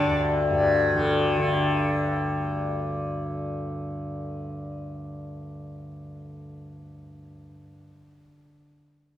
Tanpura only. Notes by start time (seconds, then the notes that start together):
Already playing: G2 D3
0.06 D2
0.50 G2
0.94 D3
1.37 D3